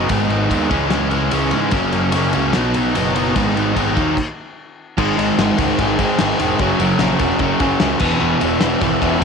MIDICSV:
0, 0, Header, 1, 4, 480
1, 0, Start_track
1, 0, Key_signature, 5, "minor"
1, 0, Tempo, 405132
1, 124, Time_signature, 4, 2, 24, 8
1, 10948, End_track
2, 0, Start_track
2, 0, Title_t, "Overdriven electric guitar"
2, 0, Program_c, 0, 29
2, 0, Note_on_c, 0, 54, 52
2, 110, Note_on_c, 0, 44, 91
2, 118, Note_on_c, 0, 51, 88
2, 122, Note_off_c, 0, 54, 0
2, 127, Note_on_c, 0, 56, 95
2, 136, Note_on_c, 0, 59, 100
2, 147, Note_on_c, 0, 63, 87
2, 338, Note_off_c, 0, 63, 0
2, 346, Note_off_c, 0, 59, 0
2, 352, Note_on_c, 0, 63, 60
2, 360, Note_on_c, 0, 59, 61
2, 365, Note_off_c, 0, 56, 0
2, 380, Note_on_c, 0, 56, 56
2, 563, Note_off_c, 0, 51, 0
2, 577, Note_on_c, 0, 51, 84
2, 586, Note_off_c, 0, 56, 0
2, 596, Note_off_c, 0, 59, 0
2, 600, Note_on_c, 0, 56, 77
2, 601, Note_off_c, 0, 44, 0
2, 601, Note_off_c, 0, 63, 0
2, 610, Note_on_c, 0, 59, 86
2, 615, Note_on_c, 0, 63, 77
2, 820, Note_off_c, 0, 51, 0
2, 820, Note_off_c, 0, 63, 0
2, 824, Note_on_c, 0, 61, 88
2, 827, Note_off_c, 0, 56, 0
2, 836, Note_off_c, 0, 59, 0
2, 842, Note_on_c, 0, 56, 73
2, 852, Note_on_c, 0, 52, 67
2, 861, Note_on_c, 0, 49, 71
2, 1051, Note_off_c, 0, 49, 0
2, 1064, Note_off_c, 0, 52, 0
2, 1066, Note_on_c, 0, 49, 70
2, 1076, Note_off_c, 0, 56, 0
2, 1078, Note_on_c, 0, 52, 73
2, 1090, Note_off_c, 0, 61, 0
2, 1091, Note_on_c, 0, 56, 80
2, 1104, Note_on_c, 0, 61, 79
2, 1286, Note_off_c, 0, 61, 0
2, 1301, Note_on_c, 0, 61, 67
2, 1310, Note_off_c, 0, 56, 0
2, 1324, Note_on_c, 0, 56, 70
2, 1330, Note_off_c, 0, 52, 0
2, 1345, Note_on_c, 0, 52, 57
2, 1543, Note_off_c, 0, 49, 0
2, 1554, Note_off_c, 0, 52, 0
2, 1557, Note_on_c, 0, 49, 74
2, 1564, Note_off_c, 0, 56, 0
2, 1568, Note_on_c, 0, 52, 86
2, 1577, Note_off_c, 0, 61, 0
2, 1578, Note_on_c, 0, 56, 96
2, 1592, Note_on_c, 0, 61, 99
2, 1772, Note_off_c, 0, 61, 0
2, 1786, Note_on_c, 0, 61, 66
2, 1792, Note_off_c, 0, 56, 0
2, 1806, Note_on_c, 0, 56, 63
2, 1809, Note_off_c, 0, 52, 0
2, 1823, Note_on_c, 0, 52, 55
2, 2023, Note_off_c, 0, 49, 0
2, 2024, Note_on_c, 0, 42, 93
2, 2028, Note_off_c, 0, 61, 0
2, 2037, Note_on_c, 0, 49, 90
2, 2038, Note_off_c, 0, 56, 0
2, 2042, Note_off_c, 0, 52, 0
2, 2046, Note_on_c, 0, 54, 98
2, 2046, Note_on_c, 0, 58, 101
2, 2059, Note_on_c, 0, 61, 101
2, 2256, Note_off_c, 0, 61, 0
2, 2270, Note_on_c, 0, 61, 73
2, 2271, Note_off_c, 0, 58, 0
2, 2285, Note_on_c, 0, 58, 61
2, 2291, Note_off_c, 0, 54, 0
2, 2305, Note_on_c, 0, 54, 48
2, 2498, Note_off_c, 0, 49, 0
2, 2512, Note_on_c, 0, 49, 76
2, 2517, Note_off_c, 0, 54, 0
2, 2523, Note_off_c, 0, 42, 0
2, 2531, Note_on_c, 0, 54, 70
2, 2533, Note_off_c, 0, 58, 0
2, 2537, Note_off_c, 0, 61, 0
2, 2547, Note_on_c, 0, 58, 78
2, 2551, Note_on_c, 0, 61, 81
2, 2752, Note_off_c, 0, 61, 0
2, 2765, Note_off_c, 0, 54, 0
2, 2766, Note_on_c, 0, 61, 80
2, 2767, Note_off_c, 0, 58, 0
2, 2777, Note_off_c, 0, 49, 0
2, 2780, Note_on_c, 0, 54, 73
2, 2781, Note_on_c, 0, 58, 79
2, 2792, Note_on_c, 0, 49, 77
2, 2801, Note_on_c, 0, 42, 72
2, 3000, Note_off_c, 0, 61, 0
2, 3007, Note_off_c, 0, 54, 0
2, 3007, Note_off_c, 0, 58, 0
2, 3009, Note_off_c, 0, 49, 0
2, 3014, Note_on_c, 0, 47, 85
2, 3018, Note_off_c, 0, 42, 0
2, 3027, Note_on_c, 0, 54, 79
2, 3035, Note_on_c, 0, 59, 93
2, 3049, Note_on_c, 0, 63, 93
2, 3233, Note_off_c, 0, 63, 0
2, 3248, Note_on_c, 0, 63, 69
2, 3255, Note_off_c, 0, 59, 0
2, 3261, Note_off_c, 0, 54, 0
2, 3269, Note_on_c, 0, 59, 63
2, 3275, Note_on_c, 0, 54, 56
2, 3471, Note_off_c, 0, 47, 0
2, 3485, Note_off_c, 0, 54, 0
2, 3486, Note_on_c, 0, 47, 78
2, 3498, Note_off_c, 0, 59, 0
2, 3499, Note_on_c, 0, 54, 89
2, 3509, Note_off_c, 0, 63, 0
2, 3512, Note_on_c, 0, 59, 86
2, 3523, Note_on_c, 0, 63, 99
2, 3702, Note_off_c, 0, 63, 0
2, 3717, Note_on_c, 0, 63, 66
2, 3726, Note_off_c, 0, 59, 0
2, 3737, Note_off_c, 0, 54, 0
2, 3740, Note_on_c, 0, 59, 68
2, 3751, Note_on_c, 0, 54, 57
2, 3957, Note_off_c, 0, 63, 0
2, 3961, Note_off_c, 0, 47, 0
2, 3968, Note_off_c, 0, 59, 0
2, 3972, Note_on_c, 0, 44, 92
2, 3974, Note_off_c, 0, 54, 0
2, 3983, Note_on_c, 0, 51, 95
2, 3989, Note_on_c, 0, 56, 98
2, 3995, Note_on_c, 0, 59, 103
2, 4004, Note_on_c, 0, 63, 107
2, 4190, Note_off_c, 0, 63, 0
2, 4201, Note_off_c, 0, 59, 0
2, 4205, Note_on_c, 0, 63, 63
2, 4215, Note_on_c, 0, 59, 65
2, 4223, Note_off_c, 0, 56, 0
2, 4237, Note_on_c, 0, 56, 56
2, 4406, Note_off_c, 0, 51, 0
2, 4420, Note_on_c, 0, 51, 70
2, 4425, Note_off_c, 0, 56, 0
2, 4439, Note_off_c, 0, 59, 0
2, 4440, Note_on_c, 0, 56, 78
2, 4449, Note_off_c, 0, 63, 0
2, 4453, Note_on_c, 0, 59, 80
2, 4459, Note_off_c, 0, 44, 0
2, 4463, Note_on_c, 0, 63, 85
2, 4651, Note_off_c, 0, 63, 0
2, 4665, Note_on_c, 0, 63, 92
2, 4669, Note_off_c, 0, 51, 0
2, 4675, Note_off_c, 0, 59, 0
2, 4678, Note_off_c, 0, 56, 0
2, 4680, Note_on_c, 0, 58, 82
2, 4689, Note_on_c, 0, 54, 78
2, 4699, Note_on_c, 0, 51, 69
2, 4911, Note_off_c, 0, 63, 0
2, 4919, Note_off_c, 0, 58, 0
2, 4923, Note_off_c, 0, 54, 0
2, 4928, Note_off_c, 0, 51, 0
2, 5899, Note_on_c, 0, 44, 94
2, 5906, Note_on_c, 0, 51, 98
2, 5913, Note_on_c, 0, 56, 104
2, 6127, Note_off_c, 0, 44, 0
2, 6128, Note_off_c, 0, 51, 0
2, 6137, Note_off_c, 0, 56, 0
2, 6141, Note_on_c, 0, 44, 86
2, 6143, Note_on_c, 0, 51, 85
2, 6151, Note_on_c, 0, 56, 106
2, 6380, Note_off_c, 0, 44, 0
2, 6382, Note_off_c, 0, 51, 0
2, 6392, Note_off_c, 0, 56, 0
2, 6394, Note_on_c, 0, 44, 102
2, 6396, Note_on_c, 0, 51, 105
2, 6406, Note_on_c, 0, 56, 110
2, 6601, Note_off_c, 0, 44, 0
2, 6614, Note_off_c, 0, 51, 0
2, 6615, Note_on_c, 0, 44, 75
2, 6618, Note_off_c, 0, 56, 0
2, 6629, Note_on_c, 0, 51, 79
2, 6632, Note_on_c, 0, 56, 100
2, 6851, Note_off_c, 0, 44, 0
2, 6862, Note_off_c, 0, 51, 0
2, 6866, Note_on_c, 0, 44, 77
2, 6867, Note_off_c, 0, 56, 0
2, 6876, Note_on_c, 0, 51, 88
2, 6881, Note_on_c, 0, 56, 93
2, 7077, Note_off_c, 0, 44, 0
2, 7090, Note_off_c, 0, 51, 0
2, 7091, Note_on_c, 0, 44, 85
2, 7096, Note_off_c, 0, 56, 0
2, 7104, Note_on_c, 0, 51, 96
2, 7110, Note_on_c, 0, 56, 96
2, 7319, Note_off_c, 0, 44, 0
2, 7332, Note_off_c, 0, 51, 0
2, 7333, Note_on_c, 0, 44, 79
2, 7346, Note_off_c, 0, 56, 0
2, 7346, Note_on_c, 0, 51, 83
2, 7360, Note_on_c, 0, 56, 90
2, 7559, Note_off_c, 0, 44, 0
2, 7563, Note_off_c, 0, 51, 0
2, 7567, Note_off_c, 0, 56, 0
2, 7573, Note_on_c, 0, 44, 82
2, 7577, Note_on_c, 0, 51, 90
2, 7581, Note_on_c, 0, 56, 89
2, 7801, Note_off_c, 0, 44, 0
2, 7804, Note_off_c, 0, 51, 0
2, 7806, Note_off_c, 0, 56, 0
2, 7823, Note_on_c, 0, 42, 102
2, 7826, Note_on_c, 0, 49, 99
2, 7839, Note_on_c, 0, 54, 115
2, 8042, Note_off_c, 0, 42, 0
2, 8052, Note_off_c, 0, 49, 0
2, 8056, Note_off_c, 0, 54, 0
2, 8056, Note_on_c, 0, 42, 85
2, 8066, Note_on_c, 0, 49, 101
2, 8071, Note_on_c, 0, 54, 105
2, 8278, Note_off_c, 0, 42, 0
2, 8293, Note_on_c, 0, 42, 90
2, 8294, Note_off_c, 0, 49, 0
2, 8303, Note_off_c, 0, 54, 0
2, 8308, Note_on_c, 0, 49, 99
2, 8317, Note_on_c, 0, 54, 110
2, 8513, Note_off_c, 0, 42, 0
2, 8517, Note_off_c, 0, 49, 0
2, 8523, Note_off_c, 0, 54, 0
2, 8527, Note_on_c, 0, 42, 85
2, 8532, Note_on_c, 0, 49, 94
2, 8537, Note_on_c, 0, 54, 87
2, 8754, Note_off_c, 0, 42, 0
2, 8755, Note_off_c, 0, 49, 0
2, 8768, Note_on_c, 0, 42, 91
2, 8769, Note_on_c, 0, 49, 91
2, 8775, Note_off_c, 0, 54, 0
2, 8789, Note_on_c, 0, 54, 98
2, 8989, Note_off_c, 0, 42, 0
2, 9001, Note_off_c, 0, 49, 0
2, 9003, Note_on_c, 0, 42, 92
2, 9010, Note_off_c, 0, 54, 0
2, 9015, Note_on_c, 0, 49, 84
2, 9024, Note_on_c, 0, 54, 94
2, 9232, Note_off_c, 0, 42, 0
2, 9244, Note_off_c, 0, 49, 0
2, 9246, Note_on_c, 0, 42, 81
2, 9250, Note_off_c, 0, 54, 0
2, 9258, Note_on_c, 0, 49, 90
2, 9265, Note_on_c, 0, 54, 97
2, 9475, Note_off_c, 0, 42, 0
2, 9481, Note_off_c, 0, 49, 0
2, 9481, Note_on_c, 0, 40, 89
2, 9484, Note_off_c, 0, 54, 0
2, 9488, Note_on_c, 0, 47, 99
2, 9493, Note_on_c, 0, 52, 118
2, 9690, Note_off_c, 0, 40, 0
2, 9698, Note_off_c, 0, 47, 0
2, 9703, Note_off_c, 0, 52, 0
2, 9705, Note_on_c, 0, 40, 102
2, 9713, Note_on_c, 0, 47, 109
2, 9717, Note_on_c, 0, 52, 115
2, 9931, Note_off_c, 0, 40, 0
2, 9936, Note_off_c, 0, 47, 0
2, 9945, Note_on_c, 0, 40, 87
2, 9949, Note_off_c, 0, 52, 0
2, 9951, Note_on_c, 0, 47, 89
2, 9963, Note_on_c, 0, 52, 98
2, 10174, Note_off_c, 0, 40, 0
2, 10182, Note_off_c, 0, 47, 0
2, 10188, Note_on_c, 0, 40, 101
2, 10192, Note_off_c, 0, 52, 0
2, 10196, Note_on_c, 0, 47, 112
2, 10207, Note_on_c, 0, 52, 115
2, 10428, Note_off_c, 0, 40, 0
2, 10431, Note_off_c, 0, 47, 0
2, 10443, Note_off_c, 0, 52, 0
2, 10443, Note_on_c, 0, 40, 86
2, 10446, Note_on_c, 0, 47, 85
2, 10457, Note_on_c, 0, 52, 94
2, 10663, Note_off_c, 0, 40, 0
2, 10664, Note_off_c, 0, 47, 0
2, 10675, Note_off_c, 0, 52, 0
2, 10678, Note_on_c, 0, 40, 90
2, 10679, Note_on_c, 0, 47, 92
2, 10689, Note_on_c, 0, 52, 96
2, 10891, Note_off_c, 0, 40, 0
2, 10904, Note_off_c, 0, 47, 0
2, 10905, Note_on_c, 0, 40, 93
2, 10907, Note_off_c, 0, 52, 0
2, 10948, Note_off_c, 0, 40, 0
2, 10948, End_track
3, 0, Start_track
3, 0, Title_t, "Picked electric bass"
3, 0, Program_c, 1, 34
3, 109, Note_on_c, 1, 32, 93
3, 331, Note_off_c, 1, 32, 0
3, 338, Note_on_c, 1, 32, 80
3, 577, Note_off_c, 1, 32, 0
3, 599, Note_on_c, 1, 39, 83
3, 828, Note_off_c, 1, 39, 0
3, 836, Note_on_c, 1, 37, 98
3, 1068, Note_off_c, 1, 37, 0
3, 1075, Note_on_c, 1, 37, 92
3, 1533, Note_off_c, 1, 37, 0
3, 1569, Note_on_c, 1, 37, 87
3, 1797, Note_off_c, 1, 37, 0
3, 1811, Note_on_c, 1, 44, 78
3, 2038, Note_off_c, 1, 44, 0
3, 2047, Note_on_c, 1, 30, 89
3, 2276, Note_off_c, 1, 30, 0
3, 2294, Note_on_c, 1, 30, 91
3, 2521, Note_off_c, 1, 30, 0
3, 2541, Note_on_c, 1, 30, 87
3, 2765, Note_off_c, 1, 30, 0
3, 2789, Note_on_c, 1, 37, 84
3, 3010, Note_off_c, 1, 37, 0
3, 3025, Note_on_c, 1, 35, 91
3, 3248, Note_off_c, 1, 35, 0
3, 3281, Note_on_c, 1, 35, 94
3, 3496, Note_off_c, 1, 35, 0
3, 3508, Note_on_c, 1, 30, 84
3, 3954, Note_off_c, 1, 30, 0
3, 3986, Note_on_c, 1, 32, 94
3, 4209, Note_off_c, 1, 32, 0
3, 4227, Note_on_c, 1, 32, 86
3, 4450, Note_off_c, 1, 32, 0
3, 4457, Note_on_c, 1, 32, 89
3, 4685, Note_off_c, 1, 32, 0
3, 4700, Note_on_c, 1, 39, 94
3, 4926, Note_off_c, 1, 39, 0
3, 5897, Note_on_c, 1, 32, 93
3, 6044, Note_off_c, 1, 32, 0
3, 6129, Note_on_c, 1, 32, 90
3, 6278, Note_off_c, 1, 32, 0
3, 6375, Note_on_c, 1, 32, 92
3, 6522, Note_off_c, 1, 32, 0
3, 6611, Note_on_c, 1, 37, 98
3, 6759, Note_off_c, 1, 37, 0
3, 6858, Note_on_c, 1, 32, 89
3, 7148, Note_off_c, 1, 32, 0
3, 7356, Note_on_c, 1, 32, 94
3, 7495, Note_off_c, 1, 32, 0
3, 7586, Note_on_c, 1, 28, 90
3, 7728, Note_off_c, 1, 28, 0
3, 7819, Note_on_c, 1, 30, 100
3, 7963, Note_off_c, 1, 30, 0
3, 8053, Note_on_c, 1, 30, 90
3, 8198, Note_off_c, 1, 30, 0
3, 8291, Note_on_c, 1, 34, 95
3, 8437, Note_off_c, 1, 34, 0
3, 8530, Note_on_c, 1, 28, 101
3, 8676, Note_off_c, 1, 28, 0
3, 8768, Note_on_c, 1, 30, 89
3, 8914, Note_off_c, 1, 30, 0
3, 9010, Note_on_c, 1, 30, 100
3, 9155, Note_off_c, 1, 30, 0
3, 9252, Note_on_c, 1, 37, 96
3, 9396, Note_off_c, 1, 37, 0
3, 9488, Note_on_c, 1, 28, 85
3, 9633, Note_off_c, 1, 28, 0
3, 9731, Note_on_c, 1, 28, 101
3, 9875, Note_off_c, 1, 28, 0
3, 9980, Note_on_c, 1, 28, 97
3, 10121, Note_off_c, 1, 28, 0
3, 10219, Note_on_c, 1, 28, 87
3, 10360, Note_off_c, 1, 28, 0
3, 10446, Note_on_c, 1, 32, 101
3, 10591, Note_off_c, 1, 32, 0
3, 10687, Note_on_c, 1, 28, 95
3, 10948, Note_off_c, 1, 28, 0
3, 10948, End_track
4, 0, Start_track
4, 0, Title_t, "Drums"
4, 109, Note_on_c, 9, 51, 89
4, 116, Note_on_c, 9, 36, 107
4, 227, Note_off_c, 9, 51, 0
4, 235, Note_off_c, 9, 36, 0
4, 358, Note_on_c, 9, 51, 55
4, 476, Note_off_c, 9, 51, 0
4, 602, Note_on_c, 9, 36, 82
4, 605, Note_on_c, 9, 51, 90
4, 720, Note_off_c, 9, 36, 0
4, 723, Note_off_c, 9, 51, 0
4, 840, Note_on_c, 9, 36, 99
4, 842, Note_on_c, 9, 51, 64
4, 958, Note_off_c, 9, 36, 0
4, 960, Note_off_c, 9, 51, 0
4, 1072, Note_on_c, 9, 38, 106
4, 1072, Note_on_c, 9, 51, 89
4, 1190, Note_off_c, 9, 38, 0
4, 1190, Note_off_c, 9, 51, 0
4, 1315, Note_on_c, 9, 51, 68
4, 1434, Note_off_c, 9, 51, 0
4, 1556, Note_on_c, 9, 51, 93
4, 1675, Note_off_c, 9, 51, 0
4, 1789, Note_on_c, 9, 51, 68
4, 1908, Note_off_c, 9, 51, 0
4, 2029, Note_on_c, 9, 51, 89
4, 2041, Note_on_c, 9, 36, 98
4, 2148, Note_off_c, 9, 51, 0
4, 2159, Note_off_c, 9, 36, 0
4, 2281, Note_on_c, 9, 51, 63
4, 2400, Note_off_c, 9, 51, 0
4, 2513, Note_on_c, 9, 51, 105
4, 2632, Note_off_c, 9, 51, 0
4, 2759, Note_on_c, 9, 51, 74
4, 2877, Note_off_c, 9, 51, 0
4, 3000, Note_on_c, 9, 38, 104
4, 3000, Note_on_c, 9, 51, 86
4, 3119, Note_off_c, 9, 38, 0
4, 3119, Note_off_c, 9, 51, 0
4, 3249, Note_on_c, 9, 51, 77
4, 3368, Note_off_c, 9, 51, 0
4, 3497, Note_on_c, 9, 51, 100
4, 3616, Note_off_c, 9, 51, 0
4, 3740, Note_on_c, 9, 51, 80
4, 3858, Note_off_c, 9, 51, 0
4, 3979, Note_on_c, 9, 51, 88
4, 3980, Note_on_c, 9, 36, 107
4, 4098, Note_off_c, 9, 36, 0
4, 4098, Note_off_c, 9, 51, 0
4, 4229, Note_on_c, 9, 51, 63
4, 4348, Note_off_c, 9, 51, 0
4, 4461, Note_on_c, 9, 36, 88
4, 4461, Note_on_c, 9, 51, 89
4, 4579, Note_off_c, 9, 36, 0
4, 4580, Note_off_c, 9, 51, 0
4, 4702, Note_on_c, 9, 36, 102
4, 4707, Note_on_c, 9, 51, 64
4, 4821, Note_off_c, 9, 36, 0
4, 4826, Note_off_c, 9, 51, 0
4, 4941, Note_on_c, 9, 36, 92
4, 4948, Note_on_c, 9, 49, 87
4, 5060, Note_off_c, 9, 36, 0
4, 5067, Note_off_c, 9, 49, 0
4, 5901, Note_on_c, 9, 36, 102
4, 5904, Note_on_c, 9, 49, 116
4, 6020, Note_off_c, 9, 36, 0
4, 6022, Note_off_c, 9, 49, 0
4, 6146, Note_on_c, 9, 51, 80
4, 6265, Note_off_c, 9, 51, 0
4, 6382, Note_on_c, 9, 38, 127
4, 6382, Note_on_c, 9, 51, 124
4, 6501, Note_off_c, 9, 38, 0
4, 6501, Note_off_c, 9, 51, 0
4, 6615, Note_on_c, 9, 51, 87
4, 6618, Note_on_c, 9, 36, 94
4, 6733, Note_off_c, 9, 51, 0
4, 6736, Note_off_c, 9, 36, 0
4, 6856, Note_on_c, 9, 36, 84
4, 6856, Note_on_c, 9, 51, 105
4, 6974, Note_off_c, 9, 36, 0
4, 6974, Note_off_c, 9, 51, 0
4, 7094, Note_on_c, 9, 51, 83
4, 7095, Note_on_c, 9, 36, 85
4, 7212, Note_off_c, 9, 51, 0
4, 7213, Note_off_c, 9, 36, 0
4, 7329, Note_on_c, 9, 38, 121
4, 7329, Note_on_c, 9, 51, 127
4, 7448, Note_off_c, 9, 38, 0
4, 7448, Note_off_c, 9, 51, 0
4, 7577, Note_on_c, 9, 51, 81
4, 7695, Note_off_c, 9, 51, 0
4, 7810, Note_on_c, 9, 51, 98
4, 7814, Note_on_c, 9, 36, 109
4, 7928, Note_off_c, 9, 51, 0
4, 7933, Note_off_c, 9, 36, 0
4, 8052, Note_on_c, 9, 51, 74
4, 8170, Note_off_c, 9, 51, 0
4, 8282, Note_on_c, 9, 38, 113
4, 8282, Note_on_c, 9, 51, 116
4, 8400, Note_off_c, 9, 38, 0
4, 8400, Note_off_c, 9, 51, 0
4, 8522, Note_on_c, 9, 51, 86
4, 8528, Note_on_c, 9, 36, 86
4, 8641, Note_off_c, 9, 51, 0
4, 8647, Note_off_c, 9, 36, 0
4, 8755, Note_on_c, 9, 51, 94
4, 8767, Note_on_c, 9, 36, 83
4, 8874, Note_off_c, 9, 51, 0
4, 8886, Note_off_c, 9, 36, 0
4, 9002, Note_on_c, 9, 51, 75
4, 9008, Note_on_c, 9, 36, 97
4, 9121, Note_off_c, 9, 51, 0
4, 9126, Note_off_c, 9, 36, 0
4, 9240, Note_on_c, 9, 38, 118
4, 9240, Note_on_c, 9, 51, 112
4, 9359, Note_off_c, 9, 38, 0
4, 9359, Note_off_c, 9, 51, 0
4, 9471, Note_on_c, 9, 57, 109
4, 9486, Note_on_c, 9, 36, 117
4, 9590, Note_off_c, 9, 57, 0
4, 9604, Note_off_c, 9, 36, 0
4, 9965, Note_on_c, 9, 51, 78
4, 10084, Note_off_c, 9, 51, 0
4, 10197, Note_on_c, 9, 38, 117
4, 10197, Note_on_c, 9, 51, 110
4, 10315, Note_off_c, 9, 38, 0
4, 10315, Note_off_c, 9, 51, 0
4, 10441, Note_on_c, 9, 51, 88
4, 10444, Note_on_c, 9, 36, 90
4, 10560, Note_off_c, 9, 51, 0
4, 10563, Note_off_c, 9, 36, 0
4, 10685, Note_on_c, 9, 36, 88
4, 10690, Note_on_c, 9, 51, 116
4, 10803, Note_off_c, 9, 36, 0
4, 10808, Note_off_c, 9, 51, 0
4, 10948, End_track
0, 0, End_of_file